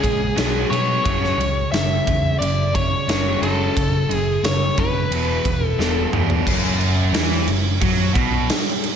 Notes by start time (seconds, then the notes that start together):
Already playing: G#4
0.03 A#1 C#3 G#3, kick, ride
0.36 B1 B2 F#3 B3, snare, ride
0.69 B2 F#3 B3 C#5, ride
1.03 F#1 F#2 C#3 F#3, kick, ride
1.24 snare
1.38 C#2 F#2 C#3, ride
1.72 F#1 F#2 C#3 E5, snare, ride
2.05 E2 F#2 C#3, kick, ride
2.39 F#1 F#2 C#3 D5, ride
2.73 F#2 C#3 C#5, kick, ride
3.07 F#1 F#2 C#3 F#3, snare, ride
3.42 F#1 F#2 C#3 F#3 A4, ride
3.76 F#1 F#2 C#3, kick, ride
4.09 F#1 F#2 C#3 G#4, ride
4.43 F#1 F#2 C#3 C#5, snare, ride
4.77 F#1 F#2 C#3 B4, kick, ride
5.11 E1 E2 B2 E3, ride
5.44 E1 E2 B2, kick, ride
5.67 A4
5.78 E1 E2 B2 E3, snare
6.12 E2 B2 E3, mid tom
6.30 floor tom
6.45 F#1 F#2, kick, crash
6.81 crash
7.13 E2 E3, snare, crash
7.47 F#1 F#2, crash
7.81 F#2 F#3, kick, crash
8.15 B1 B2, kick, crash
8.49 snare, crash
8.83 crash